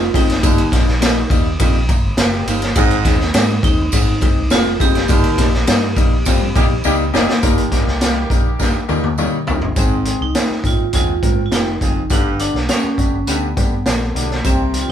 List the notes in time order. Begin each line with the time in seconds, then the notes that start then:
Already playing: F4
0.14 F#1 F2 G#3 C4 D#4, kick, open hi-hat, ride, tambourine
0.29 snare, ride
0.43 G1 D#2 G3 A#3 D#4, kick, hi-hat pedal, ride, tambourine
0.58 ride
0.72 A#1 G3 A#3 D#4, kick, snare, ride, tambourine
0.88 snare
1.00 G3 A#3 D#4, snare, ride, tambourine
1.30 D#2 G3 A#3 D#4, kick, ride, tambourine
1.59 A#1 F2 G3 A#3 D#4, kick, ride, tambourine
1.88 A#5, kick, ride, tambourine
2.03 G1
2.17 F#1 F4 G5, snare, ride, tambourine
2.33 A#3 G4
2.47 G1 D#2 D#4 C5 F5, ride, tambourine
2.62 C#4 A#4, snare, ride
2.75 G#1 G#2 G#3 C4 D#4, kick, ride, tambourine
2.91 ride
3.05 D#2 G#3 C4 D#4, kick, snare, ride, tambourine
3.20 snare
3.34 G#2 G#3 C4 D#4, snare, ride, tambourine
3.63 D#2 G#3 C4 D#4, kick, ride, tambourine
3.92 G#1 G#2 G#3 C4 D#4, kick, ride, tambourine
4.21 G#3 C4 D#4, kick, ride, tambourine
4.36 C2
4.50 F1 G#3 C4 F4, snare, ride, tambourine
4.79 F#1 F2 G#3 C4 D#4 G4, kick, ride, tambourine
4.95 snare, ride
5.08 G1 D#2 G3 A#3 D#4, kick, ride, tambourine
5.24 ride
5.38 A#1 G3 A#3 D#4, kick, snare, ride, tambourine
5.53 snare
5.67 G2 G3 A#3 D#4, snare, ride, tambourine
5.96 A#1 G3 A#3 D#4, kick, ride, tambourine
6.25 F2 G3 A#3 C4, kick, ride, tambourine
6.41 G2
6.55 A#2 D#3 G3 A#3 D#4 G4, kick, ride, tambourine
6.70 A#1
6.84 C#2 D#3 G3 A#3 D#4 G4, tambourine
7.13 F#1 D#2 D#3 G3 A#3 D#4 G4, snare, tambourine
7.29 snare
7.42 G1 D#2 D#3 G3 A#3 D#4 G4 A#4, kick, closed hi-hat, tambourine
7.58 closed hi-hat
7.72 G3 A#3 D#4 A#4, kick, snare, closed hi-hat, tambourine
7.87 C2, snare
8.01 G3 A#3 D#4 F4, snare, closed hi-hat, tambourine
8.30 A#1 G3 A#3 D#4 A#4, kick, closed hi-hat, tambourine
8.59 G2 G3 A#3 D#4 A#4, kick, snare, tambourine
8.75 muted fingered electric bass stroke
8.88 D#2 G3 A#3 D#4 A#4, high tom, tambourine
9.04 high tom
9.18 G3 A#3 D#4 C#5, mid tom, tambourine
9.47 C2 F2 G3 A#3 D#4 A#4, floor tom, tambourine
9.62 G1, floor tom
9.76 G#1 G#2 D#3 G#3 C4 G#4, kick, closed hi-hat, tambourine
10.05 D#3 G#3 C4 G#4, closed hi-hat, tambourine
10.21 C2 D#4
10.35 D#3 G#3 C4 D#4, snare, closed hi-hat, tambourine
10.50 muted fingered electric bass stroke
10.64 G#1 D#3 G#3 C4 D#4 F4, kick, closed hi-hat, tambourine
10.93 D#2 G#2 D#3 G#3 C4 F4 G#4, kick, closed hi-hat, tambourine
11.23 G#2 D#3 G#3 C4 A#4, kick, closed hi-hat, tambourine
11.46 F4
11.52 F1 D#3 G#3 C4 D#4 G4, snare, closed hi-hat, tambourine
11.81 F#1 F2 D#3 G#3 C4 G#4, kick, closed hi-hat, tambourine
12.10 G1 G2 D3 G3 B3 D4 G4, kick, closed hi-hat, tambourine
12.39 D3 G3 B3 D4, closed hi-hat, tambourine
12.54 B1, snare
12.69 D3 G3 B3 C#4 G4, snare, closed hi-hat, tambourine
12.84 muted fingered electric bass stroke
12.98 G1 D3 G3 B3 G4, kick, closed hi-hat, tambourine
13.27 D2 G2 D3 G3 B3 G4, closed hi-hat, tambourine
13.56 G2 D3 G3 B3 G4, kick, closed hi-hat, tambourine
13.86 A#1 D3 G3 B3 A4, snare, closed hi-hat, tambourine
14.15 B1 D2 D3 G3 B3 D4, closed hi-hat, tambourine
14.30 snare
14.44 C2 C3 D#3 G3 C4 G4, kick, closed hi-hat, tambourine
14.73 D#3 G3 C4 G4, closed hi-hat, tambourine
14.82 F4